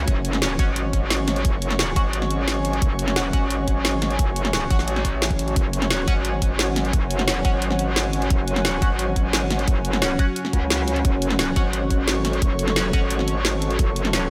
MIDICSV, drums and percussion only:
0, 0, Header, 1, 2, 480
1, 0, Start_track
1, 0, Key_signature, 3, "minor"
1, 0, Tempo, 342857
1, 106, Time_signature, 4, 2, 24, 8
1, 20020, End_track
2, 0, Start_track
2, 0, Title_t, "Drums"
2, 107, Note_on_c, 9, 42, 97
2, 108, Note_on_c, 9, 36, 111
2, 247, Note_off_c, 9, 42, 0
2, 248, Note_off_c, 9, 36, 0
2, 347, Note_on_c, 9, 42, 66
2, 467, Note_off_c, 9, 42, 0
2, 467, Note_on_c, 9, 40, 51
2, 467, Note_on_c, 9, 42, 35
2, 587, Note_off_c, 9, 42, 0
2, 587, Note_on_c, 9, 38, 127
2, 587, Note_on_c, 9, 42, 92
2, 607, Note_off_c, 9, 40, 0
2, 727, Note_off_c, 9, 38, 0
2, 727, Note_off_c, 9, 42, 0
2, 827, Note_on_c, 9, 42, 68
2, 828, Note_on_c, 9, 36, 107
2, 967, Note_off_c, 9, 42, 0
2, 968, Note_off_c, 9, 36, 0
2, 1067, Note_on_c, 9, 42, 89
2, 1207, Note_off_c, 9, 42, 0
2, 1307, Note_on_c, 9, 42, 67
2, 1308, Note_on_c, 9, 36, 59
2, 1447, Note_off_c, 9, 42, 0
2, 1448, Note_off_c, 9, 36, 0
2, 1547, Note_on_c, 9, 38, 117
2, 1547, Note_on_c, 9, 42, 85
2, 1687, Note_off_c, 9, 38, 0
2, 1687, Note_off_c, 9, 42, 0
2, 1787, Note_on_c, 9, 40, 55
2, 1787, Note_on_c, 9, 42, 68
2, 1908, Note_off_c, 9, 42, 0
2, 1908, Note_on_c, 9, 42, 37
2, 1927, Note_off_c, 9, 40, 0
2, 2027, Note_off_c, 9, 42, 0
2, 2027, Note_on_c, 9, 36, 114
2, 2027, Note_on_c, 9, 42, 96
2, 2167, Note_off_c, 9, 36, 0
2, 2167, Note_off_c, 9, 42, 0
2, 2267, Note_on_c, 9, 42, 67
2, 2388, Note_off_c, 9, 42, 0
2, 2388, Note_on_c, 9, 40, 49
2, 2388, Note_on_c, 9, 42, 37
2, 2508, Note_off_c, 9, 42, 0
2, 2508, Note_on_c, 9, 38, 120
2, 2508, Note_on_c, 9, 42, 95
2, 2528, Note_off_c, 9, 40, 0
2, 2648, Note_off_c, 9, 38, 0
2, 2648, Note_off_c, 9, 42, 0
2, 2747, Note_on_c, 9, 36, 103
2, 2747, Note_on_c, 9, 42, 69
2, 2887, Note_off_c, 9, 36, 0
2, 2887, Note_off_c, 9, 42, 0
2, 2987, Note_on_c, 9, 42, 94
2, 3107, Note_on_c, 9, 40, 34
2, 3127, Note_off_c, 9, 42, 0
2, 3227, Note_on_c, 9, 42, 67
2, 3247, Note_off_c, 9, 40, 0
2, 3367, Note_off_c, 9, 42, 0
2, 3467, Note_on_c, 9, 38, 106
2, 3467, Note_on_c, 9, 42, 91
2, 3607, Note_off_c, 9, 38, 0
2, 3607, Note_off_c, 9, 42, 0
2, 3707, Note_on_c, 9, 42, 68
2, 3827, Note_off_c, 9, 42, 0
2, 3827, Note_on_c, 9, 42, 37
2, 3947, Note_off_c, 9, 42, 0
2, 3947, Note_on_c, 9, 36, 116
2, 3947, Note_on_c, 9, 42, 101
2, 4087, Note_off_c, 9, 36, 0
2, 4087, Note_off_c, 9, 42, 0
2, 4186, Note_on_c, 9, 42, 70
2, 4307, Note_off_c, 9, 42, 0
2, 4307, Note_on_c, 9, 40, 54
2, 4307, Note_on_c, 9, 42, 37
2, 4427, Note_off_c, 9, 42, 0
2, 4427, Note_on_c, 9, 38, 113
2, 4427, Note_on_c, 9, 42, 101
2, 4447, Note_off_c, 9, 40, 0
2, 4567, Note_off_c, 9, 38, 0
2, 4567, Note_off_c, 9, 42, 0
2, 4667, Note_on_c, 9, 36, 103
2, 4667, Note_on_c, 9, 42, 71
2, 4807, Note_off_c, 9, 36, 0
2, 4807, Note_off_c, 9, 42, 0
2, 4907, Note_on_c, 9, 42, 93
2, 5047, Note_off_c, 9, 42, 0
2, 5147, Note_on_c, 9, 36, 55
2, 5147, Note_on_c, 9, 42, 74
2, 5287, Note_off_c, 9, 36, 0
2, 5287, Note_off_c, 9, 42, 0
2, 5387, Note_on_c, 9, 38, 114
2, 5387, Note_on_c, 9, 42, 91
2, 5527, Note_off_c, 9, 38, 0
2, 5527, Note_off_c, 9, 42, 0
2, 5627, Note_on_c, 9, 40, 53
2, 5627, Note_on_c, 9, 42, 70
2, 5747, Note_off_c, 9, 42, 0
2, 5747, Note_on_c, 9, 42, 39
2, 5767, Note_off_c, 9, 40, 0
2, 5867, Note_off_c, 9, 42, 0
2, 5867, Note_on_c, 9, 36, 112
2, 5867, Note_on_c, 9, 42, 104
2, 6007, Note_off_c, 9, 36, 0
2, 6007, Note_off_c, 9, 42, 0
2, 6107, Note_on_c, 9, 42, 69
2, 6227, Note_off_c, 9, 42, 0
2, 6227, Note_on_c, 9, 40, 56
2, 6227, Note_on_c, 9, 42, 39
2, 6347, Note_off_c, 9, 42, 0
2, 6347, Note_on_c, 9, 38, 115
2, 6347, Note_on_c, 9, 42, 102
2, 6367, Note_off_c, 9, 40, 0
2, 6487, Note_off_c, 9, 38, 0
2, 6487, Note_off_c, 9, 42, 0
2, 6587, Note_on_c, 9, 36, 107
2, 6587, Note_on_c, 9, 42, 71
2, 6707, Note_on_c, 9, 38, 35
2, 6727, Note_off_c, 9, 36, 0
2, 6727, Note_off_c, 9, 42, 0
2, 6827, Note_on_c, 9, 42, 91
2, 6847, Note_off_c, 9, 38, 0
2, 6948, Note_on_c, 9, 40, 36
2, 6967, Note_off_c, 9, 42, 0
2, 7067, Note_on_c, 9, 42, 73
2, 7068, Note_on_c, 9, 36, 56
2, 7088, Note_off_c, 9, 40, 0
2, 7207, Note_off_c, 9, 42, 0
2, 7208, Note_off_c, 9, 36, 0
2, 7308, Note_on_c, 9, 38, 109
2, 7308, Note_on_c, 9, 42, 93
2, 7428, Note_off_c, 9, 42, 0
2, 7428, Note_on_c, 9, 36, 63
2, 7428, Note_on_c, 9, 42, 38
2, 7448, Note_off_c, 9, 38, 0
2, 7548, Note_off_c, 9, 42, 0
2, 7548, Note_on_c, 9, 42, 73
2, 7568, Note_off_c, 9, 36, 0
2, 7668, Note_off_c, 9, 42, 0
2, 7668, Note_on_c, 9, 42, 40
2, 7788, Note_off_c, 9, 42, 0
2, 7788, Note_on_c, 9, 36, 111
2, 7788, Note_on_c, 9, 42, 103
2, 7928, Note_off_c, 9, 36, 0
2, 7928, Note_off_c, 9, 42, 0
2, 8027, Note_on_c, 9, 42, 74
2, 8147, Note_off_c, 9, 42, 0
2, 8147, Note_on_c, 9, 40, 57
2, 8147, Note_on_c, 9, 42, 39
2, 8267, Note_off_c, 9, 42, 0
2, 8267, Note_on_c, 9, 38, 116
2, 8267, Note_on_c, 9, 42, 102
2, 8287, Note_off_c, 9, 40, 0
2, 8407, Note_off_c, 9, 38, 0
2, 8407, Note_off_c, 9, 42, 0
2, 8507, Note_on_c, 9, 42, 71
2, 8508, Note_on_c, 9, 36, 108
2, 8647, Note_off_c, 9, 42, 0
2, 8648, Note_off_c, 9, 36, 0
2, 8747, Note_on_c, 9, 42, 96
2, 8887, Note_off_c, 9, 42, 0
2, 8987, Note_on_c, 9, 42, 75
2, 8988, Note_on_c, 9, 36, 60
2, 9127, Note_off_c, 9, 42, 0
2, 9128, Note_off_c, 9, 36, 0
2, 9227, Note_on_c, 9, 38, 118
2, 9227, Note_on_c, 9, 42, 93
2, 9367, Note_off_c, 9, 38, 0
2, 9367, Note_off_c, 9, 42, 0
2, 9467, Note_on_c, 9, 40, 57
2, 9467, Note_on_c, 9, 42, 73
2, 9587, Note_off_c, 9, 42, 0
2, 9587, Note_on_c, 9, 42, 37
2, 9607, Note_off_c, 9, 40, 0
2, 9707, Note_on_c, 9, 36, 126
2, 9708, Note_off_c, 9, 42, 0
2, 9708, Note_on_c, 9, 42, 98
2, 9847, Note_off_c, 9, 36, 0
2, 9848, Note_off_c, 9, 42, 0
2, 9948, Note_on_c, 9, 42, 67
2, 10067, Note_off_c, 9, 42, 0
2, 10067, Note_on_c, 9, 40, 57
2, 10067, Note_on_c, 9, 42, 38
2, 10187, Note_off_c, 9, 42, 0
2, 10187, Note_on_c, 9, 38, 127
2, 10187, Note_on_c, 9, 42, 100
2, 10207, Note_off_c, 9, 40, 0
2, 10327, Note_off_c, 9, 38, 0
2, 10327, Note_off_c, 9, 42, 0
2, 10427, Note_on_c, 9, 36, 113
2, 10427, Note_on_c, 9, 42, 69
2, 10567, Note_off_c, 9, 36, 0
2, 10567, Note_off_c, 9, 42, 0
2, 10667, Note_on_c, 9, 42, 90
2, 10787, Note_on_c, 9, 40, 38
2, 10807, Note_off_c, 9, 42, 0
2, 10907, Note_on_c, 9, 42, 72
2, 10927, Note_off_c, 9, 40, 0
2, 11047, Note_off_c, 9, 42, 0
2, 11147, Note_on_c, 9, 38, 123
2, 11147, Note_on_c, 9, 42, 91
2, 11287, Note_off_c, 9, 38, 0
2, 11287, Note_off_c, 9, 42, 0
2, 11387, Note_on_c, 9, 42, 68
2, 11507, Note_off_c, 9, 42, 0
2, 11507, Note_on_c, 9, 42, 38
2, 11626, Note_off_c, 9, 42, 0
2, 11626, Note_on_c, 9, 42, 93
2, 11627, Note_on_c, 9, 36, 127
2, 11766, Note_off_c, 9, 42, 0
2, 11767, Note_off_c, 9, 36, 0
2, 11867, Note_on_c, 9, 42, 67
2, 11987, Note_off_c, 9, 42, 0
2, 11987, Note_on_c, 9, 40, 53
2, 11987, Note_on_c, 9, 42, 35
2, 12107, Note_off_c, 9, 42, 0
2, 12107, Note_on_c, 9, 38, 124
2, 12107, Note_on_c, 9, 42, 97
2, 12127, Note_off_c, 9, 40, 0
2, 12247, Note_off_c, 9, 38, 0
2, 12247, Note_off_c, 9, 42, 0
2, 12347, Note_on_c, 9, 36, 119
2, 12348, Note_on_c, 9, 42, 66
2, 12487, Note_off_c, 9, 36, 0
2, 12488, Note_off_c, 9, 42, 0
2, 12587, Note_on_c, 9, 42, 92
2, 12727, Note_off_c, 9, 42, 0
2, 12827, Note_on_c, 9, 36, 63
2, 12827, Note_on_c, 9, 42, 68
2, 12967, Note_off_c, 9, 36, 0
2, 12967, Note_off_c, 9, 42, 0
2, 13067, Note_on_c, 9, 38, 127
2, 13067, Note_on_c, 9, 42, 85
2, 13207, Note_off_c, 9, 38, 0
2, 13207, Note_off_c, 9, 42, 0
2, 13307, Note_on_c, 9, 40, 57
2, 13307, Note_on_c, 9, 42, 67
2, 13427, Note_off_c, 9, 42, 0
2, 13427, Note_on_c, 9, 42, 37
2, 13447, Note_off_c, 9, 40, 0
2, 13547, Note_off_c, 9, 42, 0
2, 13547, Note_on_c, 9, 36, 124
2, 13547, Note_on_c, 9, 42, 89
2, 13687, Note_off_c, 9, 36, 0
2, 13687, Note_off_c, 9, 42, 0
2, 13787, Note_on_c, 9, 42, 63
2, 13907, Note_off_c, 9, 42, 0
2, 13907, Note_on_c, 9, 40, 55
2, 13907, Note_on_c, 9, 42, 35
2, 14027, Note_off_c, 9, 42, 0
2, 14027, Note_on_c, 9, 38, 127
2, 14027, Note_on_c, 9, 42, 92
2, 14047, Note_off_c, 9, 40, 0
2, 14167, Note_off_c, 9, 38, 0
2, 14167, Note_off_c, 9, 42, 0
2, 14267, Note_on_c, 9, 36, 111
2, 14268, Note_on_c, 9, 42, 66
2, 14407, Note_off_c, 9, 36, 0
2, 14408, Note_off_c, 9, 42, 0
2, 14507, Note_on_c, 9, 42, 90
2, 14627, Note_on_c, 9, 40, 37
2, 14647, Note_off_c, 9, 42, 0
2, 14747, Note_on_c, 9, 36, 61
2, 14747, Note_on_c, 9, 42, 69
2, 14767, Note_off_c, 9, 40, 0
2, 14887, Note_off_c, 9, 36, 0
2, 14887, Note_off_c, 9, 42, 0
2, 14986, Note_on_c, 9, 38, 127
2, 14986, Note_on_c, 9, 42, 85
2, 15126, Note_off_c, 9, 38, 0
2, 15126, Note_off_c, 9, 42, 0
2, 15227, Note_on_c, 9, 42, 63
2, 15347, Note_off_c, 9, 42, 0
2, 15347, Note_on_c, 9, 42, 36
2, 15467, Note_off_c, 9, 42, 0
2, 15467, Note_on_c, 9, 36, 123
2, 15467, Note_on_c, 9, 42, 89
2, 15607, Note_off_c, 9, 36, 0
2, 15607, Note_off_c, 9, 42, 0
2, 15707, Note_on_c, 9, 42, 65
2, 15827, Note_off_c, 9, 42, 0
2, 15827, Note_on_c, 9, 40, 53
2, 15827, Note_on_c, 9, 42, 34
2, 15946, Note_off_c, 9, 42, 0
2, 15946, Note_on_c, 9, 38, 127
2, 15946, Note_on_c, 9, 42, 96
2, 15967, Note_off_c, 9, 40, 0
2, 16086, Note_off_c, 9, 38, 0
2, 16086, Note_off_c, 9, 42, 0
2, 16187, Note_on_c, 9, 42, 66
2, 16188, Note_on_c, 9, 36, 111
2, 16327, Note_off_c, 9, 42, 0
2, 16328, Note_off_c, 9, 36, 0
2, 16427, Note_on_c, 9, 42, 93
2, 16567, Note_off_c, 9, 42, 0
2, 16667, Note_on_c, 9, 42, 66
2, 16668, Note_on_c, 9, 36, 59
2, 16807, Note_off_c, 9, 42, 0
2, 16808, Note_off_c, 9, 36, 0
2, 16907, Note_on_c, 9, 38, 115
2, 16907, Note_on_c, 9, 42, 87
2, 17047, Note_off_c, 9, 38, 0
2, 17047, Note_off_c, 9, 42, 0
2, 17147, Note_on_c, 9, 40, 54
2, 17147, Note_on_c, 9, 42, 66
2, 17267, Note_off_c, 9, 42, 0
2, 17267, Note_on_c, 9, 42, 36
2, 17287, Note_off_c, 9, 40, 0
2, 17386, Note_off_c, 9, 42, 0
2, 17386, Note_on_c, 9, 42, 97
2, 17387, Note_on_c, 9, 36, 113
2, 17526, Note_off_c, 9, 42, 0
2, 17527, Note_off_c, 9, 36, 0
2, 17627, Note_on_c, 9, 42, 67
2, 17747, Note_off_c, 9, 42, 0
2, 17747, Note_on_c, 9, 40, 53
2, 17747, Note_on_c, 9, 42, 36
2, 17867, Note_off_c, 9, 42, 0
2, 17867, Note_on_c, 9, 38, 121
2, 17867, Note_on_c, 9, 42, 94
2, 17887, Note_off_c, 9, 40, 0
2, 18007, Note_off_c, 9, 38, 0
2, 18007, Note_off_c, 9, 42, 0
2, 18107, Note_on_c, 9, 42, 67
2, 18108, Note_on_c, 9, 36, 104
2, 18247, Note_off_c, 9, 42, 0
2, 18248, Note_off_c, 9, 36, 0
2, 18347, Note_on_c, 9, 42, 95
2, 18468, Note_on_c, 9, 40, 35
2, 18487, Note_off_c, 9, 42, 0
2, 18588, Note_on_c, 9, 42, 67
2, 18608, Note_off_c, 9, 40, 0
2, 18728, Note_off_c, 9, 42, 0
2, 18827, Note_on_c, 9, 38, 113
2, 18827, Note_on_c, 9, 42, 92
2, 18967, Note_off_c, 9, 38, 0
2, 18967, Note_off_c, 9, 42, 0
2, 19067, Note_on_c, 9, 42, 65
2, 19187, Note_off_c, 9, 42, 0
2, 19187, Note_on_c, 9, 42, 37
2, 19307, Note_off_c, 9, 42, 0
2, 19307, Note_on_c, 9, 42, 101
2, 19308, Note_on_c, 9, 36, 115
2, 19447, Note_off_c, 9, 42, 0
2, 19448, Note_off_c, 9, 36, 0
2, 19547, Note_on_c, 9, 42, 67
2, 19667, Note_off_c, 9, 42, 0
2, 19667, Note_on_c, 9, 40, 52
2, 19667, Note_on_c, 9, 42, 37
2, 19787, Note_off_c, 9, 42, 0
2, 19787, Note_on_c, 9, 38, 118
2, 19787, Note_on_c, 9, 42, 96
2, 19807, Note_off_c, 9, 40, 0
2, 19927, Note_off_c, 9, 38, 0
2, 19927, Note_off_c, 9, 42, 0
2, 20020, End_track
0, 0, End_of_file